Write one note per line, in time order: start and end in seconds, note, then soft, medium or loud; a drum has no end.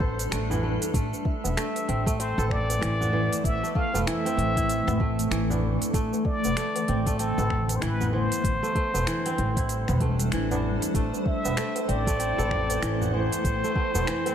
0.00 0.28 A1 medium
0.00 0.50 E3 loud
0.00 0.92 G3 medium
0.00 0.31 A3 medium
0.00 1.12 B3 medium
0.00 0.92 D4 medium
0.00 1.13 E4 medium
0.00 0.92 A4 medium
0.00 1.32 A4 medium
0.00 0.60 C5 loud
0.00 kick loud
0.00 tabla tin medium
0.19 open hi-hat soft
0.19 shaker medium
0.31 0.76 A1 medium
0.31 0.63 A3 medium
0.31 finger snap medium
0.31 open hi-hat medium
0.31 shaker medium
0.50 0.99 E3 medium
0.50 tabla na medium
0.50 tabla ge medium
0.50 shaker soft
0.63 0.94 A3 medium
0.82 open hi-hat soft
0.82 shaker medium
0.94 1.09 A1 medium
0.94 8.40 E3 medium
0.94 8.40 A3 medium
0.94 1.57 A3 medium
0.94 3.42 C5 medium
0.94 kick loud
0.94 open hi-hat medium
0.94 shaker medium
1.13 tabla tin soft
1.13 shaker soft
1.25 2.21 E5 medium
1.25 kick loud
1.44 1.55 E1 medium
1.44 tabla na medium
1.44 tabla tin medium
1.44 shaker medium
1.57 2.06 A3 medium
1.57 finger snap medium
1.57 open hi-hat soft
1.57 shaker medium
1.75 open hi-hat soft
1.75 tabla tin medium
1.75 shaker soft
1.88 2.32 A1 medium
1.88 2.19 C4 medium
1.88 open hi-hat soft
2.06 3.63 A3 medium
2.06 kick loud
2.06 open hi-hat soft
2.06 shaker medium
2.19 3.06 C4 medium
2.19 2.53 C5 loud
2.19 open hi-hat soft
2.19 shaker medium
2.38 2.78 A1 loud
2.38 3.70 A4 loud
2.38 tabla na medium
2.38 shaker soft
2.50 3.46 D5 loud
2.50 finger snap soft
2.50 kick medium
2.50 tabla ge medium
2.69 open hi-hat soft
2.69 tabla tin medium
2.69 shaker medium
2.81 3.26 A1 loud
2.81 3.12 E3 loud
2.81 finger snap medium
2.81 open hi-hat medium
2.81 shaker medium
3.00 4.31 B3 medium
3.00 tabla ge medium
3.00 shaker soft
3.13 4.06 E3 medium
3.13 tabla tin medium
3.33 open hi-hat soft
3.33 shaker medium
3.43 3.59 A1 medium
3.43 5.91 A4 medium
3.43 3.78 E5 loud
3.43 kick loud
3.43 open hi-hat medium
3.43 shaker medium
3.63 3.75 A3 medium
3.63 tabla tin soft
3.63 shaker soft
3.74 3.94 A3 medium
3.74 4.08 F5 loud
3.74 kick loud
3.74 tabla na soft
3.94 4.04 E1 medium
3.94 5.00 A3 medium
3.94 tabla na medium
3.94 tabla tin medium
3.94 tabla ge medium
3.94 shaker medium
4.07 5.30 E3 loud
4.07 5.63 E5 loud
4.07 finger snap medium
4.07 open hi-hat medium
4.07 shaker medium
4.25 6.05 C4 loud
4.25 open hi-hat soft
4.25 tabla tin medium
4.25 shaker soft
4.37 4.82 A1 medium
4.37 open hi-hat soft
4.56 6.14 E4 medium
4.56 kick loud
4.56 open hi-hat soft
4.56 shaker medium
4.69 open hi-hat medium
4.69 shaker soft
4.87 5.27 A1 loud
4.87 finger snap soft
4.87 tabla na medium
4.87 tabla ge medium
4.87 shaker soft
5.00 5.94 A3 medium
5.00 kick loud
5.00 tabla tin medium
5.19 open hi-hat soft
5.19 shaker medium
5.31 5.75 A1 loud
5.31 5.99 E3 loud
5.31 finger snap medium
5.31 open hi-hat soft
5.31 shaker soft
5.50 7.18 D4 medium
5.50 tabla na medium
5.50 tabla ge medium
5.50 shaker soft
5.82 open hi-hat soft
5.82 shaker medium
5.93 6.09 A1 medium
5.93 8.42 D3 medium
5.93 6.57 A3 medium
5.93 kick loud
5.93 open hi-hat medium
5.93 shaker medium
6.13 tabla tin soft
6.13 shaker soft
6.25 7.15 D5 loud
6.25 kick loud
6.44 6.54 E1 medium
6.44 tabla na medium
6.44 tabla tin medium
6.44 shaker medium
6.57 7.06 A3 medium
6.57 finger snap loud
6.57 open hi-hat medium
6.57 shaker medium
6.76 open hi-hat soft
6.76 tabla tin medium
6.76 shaker soft
6.88 7.32 A1 medium
6.88 7.19 C4 medium
6.88 open hi-hat soft
7.06 8.62 A3 loud
7.06 kick loud
7.06 open hi-hat soft
7.06 shaker medium
7.19 8.06 C4 medium
7.19 7.77 A4 loud
7.19 open hi-hat medium
7.19 shaker medium
7.38 7.78 A1 loud
7.38 8.70 A4 medium
7.38 tabla na soft
7.38 shaker soft
7.50 finger snap soft
7.50 kick medium
7.50 tabla ge medium
7.69 open hi-hat soft
7.69 tabla tin medium
7.69 shaker medium
7.76 7.83 C5 medium
7.81 8.26 A1 loud
7.81 8.12 E3 loud
7.81 8.14 B4 loud
7.81 finger snap medium
7.81 open hi-hat medium
7.81 shaker medium
8.00 9.32 B3 medium
8.00 tabla ge medium
8.00 shaker soft
8.13 8.49 E3 medium
8.13 10.32 C5 loud
8.13 tabla tin medium
8.32 open hi-hat soft
8.32 shaker medium
8.44 8.59 A1 medium
8.44 10.92 G3 medium
8.44 10.92 D4 medium
8.44 10.92 A4 medium
8.44 14.35 C5 loud
8.44 kick loud
8.44 open hi-hat medium
8.44 shaker medium
8.63 8.75 A3 medium
8.63 tabla tin soft
8.63 shaker soft
8.75 8.94 A3 medium
8.75 kick loud
8.75 open hi-hat soft
8.75 tabla na soft
8.94 9.04 E1 medium
8.94 10.01 A3 medium
8.94 tabla na medium
8.94 tabla tin medium
8.94 tabla ge medium
8.94 shaker medium
9.07 10.32 E3 loud
9.07 finger snap loud
9.07 open hi-hat medium
9.07 shaker medium
9.26 11.06 C4 loud
9.26 open hi-hat soft
9.26 tabla tin medium
9.26 shaker soft
9.38 9.82 A1 medium
9.38 open hi-hat soft
9.56 11.14 E4 medium
9.56 kick loud
9.56 open hi-hat soft
9.56 tabla na soft
9.56 shaker medium
9.69 open hi-hat medium
9.69 shaker medium
9.88 10.28 E1 loud
9.88 finger snap soft
9.88 tabla na soft
9.88 tabla ge medium
9.88 shaker soft
10.00 10.95 A3 medium
10.00 kick medium
10.00 open hi-hat soft
10.00 tabla tin medium
10.20 open hi-hat soft
10.20 shaker medium
10.32 10.76 A1 loud
10.32 10.99 E3 loud
10.32 finger snap medium
10.32 open hi-hat medium
10.32 shaker medium
10.51 12.19 D4 medium
10.51 tabla na medium
10.51 tabla ge medium
10.51 shaker soft
10.82 open hi-hat soft
10.82 shaker medium
10.94 11.09 A1 medium
10.94 14.35 A3 medium
10.94 11.57 A3 medium
10.94 14.35 E4 medium
10.94 14.35 A4 medium
10.94 14.35 G5 medium
10.94 kick loud
10.94 open hi-hat medium
10.94 shaker medium
11.13 tabla tin medium
11.13 shaker soft
11.26 11.91 E5 loud
11.26 kick loud
11.45 11.55 E1 medium
11.45 tabla na medium
11.45 tabla tin medium
11.45 shaker medium
11.57 12.07 A3 medium
11.57 finger snap loud
11.57 open hi-hat medium
11.57 shaker medium
11.76 open hi-hat soft
11.76 tabla tin medium
11.76 shaker soft
11.88 12.32 A1 medium
11.88 12.19 C4 medium
11.88 13.15 D5 loud
11.88 open hi-hat soft
12.07 13.63 A3 loud
12.07 kick loud
12.07 open hi-hat soft
12.07 shaker medium
12.19 13.07 C4 medium
12.19 open hi-hat medium
12.19 shaker medium
12.38 12.78 A1 loud
12.38 13.70 A4 loud
12.38 tabla na medium
12.38 shaker soft
12.50 finger snap soft
12.50 kick medium
12.50 tabla ge medium
12.70 open hi-hat soft
12.70 tabla tin medium
12.70 shaker medium
12.82 13.26 A1 loud
12.82 13.13 E3 loud
12.82 finger snap loud
12.82 open hi-hat medium
12.82 shaker medium
13.01 14.32 B3 medium
13.01 tabla ge medium
13.01 shaker soft
13.13 14.06 E3 medium
13.13 14.35 C5 loud
13.13 tabla tin medium
13.32 open hi-hat soft
13.32 shaker medium
13.44 13.59 A1 medium
13.44 kick loud
13.44 open hi-hat medium
13.44 shaker medium
13.63 13.75 A3 medium
13.63 tabla tin soft
13.63 shaker soft
13.75 13.94 A3 medium
13.75 kick loud
13.75 tabla na soft
13.94 14.05 E1 medium
13.94 14.35 A3 medium
13.94 tabla na medium
13.94 tabla tin medium
13.94 tabla ge medium
13.94 shaker medium
14.07 14.35 E3 loud
14.07 finger snap loud
14.07 open hi-hat medium
14.07 shaker medium
14.26 14.35 C4 medium
14.26 open hi-hat soft
14.26 tabla tin medium
14.26 shaker soft